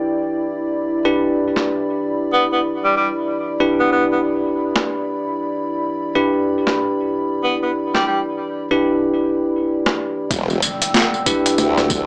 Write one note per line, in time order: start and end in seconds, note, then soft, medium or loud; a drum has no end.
0.00 1.02 D4 medium
0.00 1.02 E4 medium
0.00 10.27 E4 medium
0.00 1.02 G4 medium
0.00 1.02 B4 medium
0.00 10.27 D5 medium
0.09 10.30 B5 medium
1.05 3.57 D4 medium
1.05 3.57 E4 medium
1.05 3.57 G4 medium
1.05 3.57 B4 medium
1.56 snare soft
2.33 2.45 B3 medium
2.52 2.60 B3 medium
2.84 2.92 G3 medium
2.96 3.09 G3 medium
3.60 6.13 D4 medium
3.60 6.13 E4 medium
3.60 6.13 G4 medium
3.60 6.13 B4 medium
3.80 3.90 B3 medium
3.92 4.05 B3 medium
4.12 4.20 B3 medium
4.76 snare soft
6.15 8.68 D4 medium
6.15 8.68 E4 medium
6.15 8.68 G4 medium
6.15 8.68 B4 medium
6.67 snare soft
7.43 7.56 B3 medium
7.62 7.71 B3 medium
7.94 8.03 G3 medium
7.94 snare soft
8.07 8.19 G3 medium
8.71 10.29 D4 medium
8.71 10.29 E4 medium
8.71 10.29 G4 medium
8.71 10.29 B4 medium
9.86 snare medium
10.31 10.61 E1 medium
10.31 12.06 D5 medium
10.31 12.06 G5 medium
10.31 12.06 E6 medium
10.31 kick loud
10.31 closed hi-hat medium
10.31 tambourine soft
10.31 impact medium
10.50 tambourine soft
10.62 tambourine medium
10.82 closed hi-hat medium
10.82 tambourine soft
10.94 snare loud
10.94 closed hi-hat medium
10.94 tambourine soft
11.14 tambourine soft
11.26 12.06 D4 medium
11.26 12.06 E4 medium
11.26 12.06 G4 medium
11.26 12.06 B4 medium
11.26 kick medium
11.26 tambourine medium
11.46 closed hi-hat medium
11.46 tambourine soft
11.58 12.06 D2 loud
11.58 closed hi-hat medium
11.58 tambourine soft
11.77 snare soft
11.77 tambourine soft
11.90 kick loud
11.90 tambourine medium